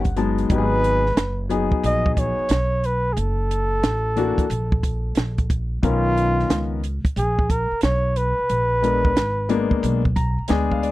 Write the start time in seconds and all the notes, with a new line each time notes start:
Already playing: G1 F#5
0.05 kick, closed hi-hat
0.16 F#3 G#3 B3 D#4 A5, closed hi-hat
0.38 closed hi-hat
0.50 G#1 F#3 B3 D#4 G4 B4, kick, closed hi-hat
0.58 G#4
0.84 closed hi-hat
1.06 snare
1.17 F#1, snare, closed hi-hat
1.49 F#3 B3 D#4 G#4, closed hi-hat
1.72 muted upright bass stroke, kick
1.83 A#1 D#5, closed hi-hat
2.06 kick
2.14 D#5, kick, closed hi-hat
2.19 C#5
2.39 muted upright bass stroke
2.49 B1, snare, closed hi-hat
2.84 B4, closed hi-hat
3.13 F#1 G#4, closed hi-hat
3.19 A4
3.51 closed hi-hat
3.83 A1, snare, closed hi-hat
4.16 E3 A#3 D4 F#4, closed hi-hat
4.38 muted upright bass stroke, kick, closed hi-hat
4.50 A#1, closed hi-hat
4.72 kick
4.83 kick, closed hi-hat
5.15 A#1, snare, closed hi-hat
5.38 kick, closed hi-hat
5.50 kick, closed hi-hat
5.83 B1 D#3 B3 C#4 F4 A#4, kick, closed hi-hat
6.17 closed hi-hat
6.40 snare
6.50 C#2, snare, closed hi-hat
6.84 closed hi-hat
7.05 kick, closed hi-hat
7.16 A#1 G#4, closed hi-hat
7.39 kick
7.50 A#4, kick, closed hi-hat
7.71 muted upright bass stroke
7.81 B1 C#5, snare, closed hi-hat
8.16 B4, closed hi-hat
8.38 muted upright bass stroke
8.50 A#1, closed hi-hat
8.82 G#3 B3 D4 A#4, closed hi-hat
9.05 kick
9.16 G#1, snare, closed hi-hat
9.49 G#3 A#3 B3 D4, closed hi-hat
9.71 muted upright bass stroke, kick
9.83 B1, closed hi-hat
10.05 kick
10.16 A#5, kick, closed hi-hat
10.39 muted upright bass stroke
10.48 D2 G#3 B3 D4 G#4 G#5, snare, closed hi-hat
10.71 F5, kick
10.82 D5, closed hi-hat